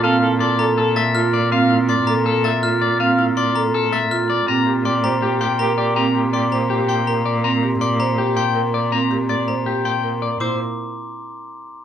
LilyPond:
<<
  \new Staff \with { instrumentName = "Glockenspiel" } { \time 4/4 \key bes \lydian \tempo 4 = 162 r4 c'''8 bes''8 r8 a'''8 f'''8 r8 | r4 c'''8 bes''8 r8 a'''8 f'''8 r8 | r4 c'''8 bes''8 r8 a'''8 f'''8 r8 | r4 c'''8 bes''8 r8 c'''8 bes''8 r8 |
r4 c'''8 bes''8 r8 c'''8 bes''8 r8 | r4 c'''8 bes''8 r8 c'''8 r4 | r4 c'''8 bes''8 r8 c'''8 r4 | d'''8 r2. r8 | }
  \new Staff \with { instrumentName = "Clean electric guitar" } { \time 4/4 \key bes \lydian f''8 r8 d''8 r8 a'8 e''8 r8 d''8 | f''8 r8 d''8 r8 a'8 e''8 r8 d''8 | f''8 r8 d''8 r8 a'8 e''8 r8 d''8 | bes''8 r8 d''8 r8 g'8 g''8 r8 d''8 |
bes''8 r8 d''8 r8 g'8 g''8 r8 d''8 | bes''8 r8 d''8 r8 g'8 g''8 r8 d''8 | bes''8 r8 d''8 r8 g'8 g''8 r8 d''8 | c''8 r2. r8 | }
  \new Staff \with { instrumentName = "Marimba" } { \time 4/4 \key bes \lydian c'8 e'8 r8 a'8 r4 f'8 r8 | c'8 e'8 r8 a'8 r4 f'8 r8 | c'8 e'8 r8 a'8 r4 f'8 r8 | c'8 g'8 r8 c''8 r4 bes'8 r8 |
c'8 g'8 r8 c''8 r4 bes'8 r8 | c'8 g'8 r8 c''8 r4 bes'8 r8 | c'8 g'8 r8 c''8 r4 bes'8 r8 | e'8 r2. r8 | }
  \new Staff \with { instrumentName = "Soprano saxophone" } { \time 4/4 \key bes \lydian a'8 a'8 a'8 a'8 a'8 a'8 a'8 r8 | r1 | r1 | g'8 g'8 g'8 g'8 g'8 g'8 g'8 g'8 |
g'8 g'8 g'8 g'8 g'8 g'8 g'8 r8 | r1 | r1 | r1 | }
  \new Staff \with { instrumentName = "Cello" } { \clef bass \time 4/4 \key bes \lydian bes,1~ | bes,1~ | bes,1 | bes,1~ |
bes,1~ | bes,1~ | bes,1 | bes,8 r2. r8 | }
>>